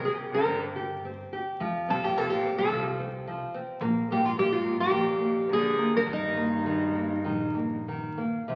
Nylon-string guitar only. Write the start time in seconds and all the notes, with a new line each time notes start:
Already playing: C4
0.15 G4
0.46 C4
0.76 G4
1.05 C4
1.33 G4
1.61 F3
1.88 C4
2.16 F3
2.44 C4
2.73 F3
2.99 C4
3.27 F3
3.54 C4
3.82 A#3
4.11 A#3
4.38 A#3
4.63 A#3
4.91 A#3
5.19 A#3
5.49 A#3
5.78 A#3
6.06 D#3
6.37 A#3
6.66 D#3
6.95 A#3
7.24 D#3
7.55 A#3
7.88 D#3
8.18 A#3
8.48 C3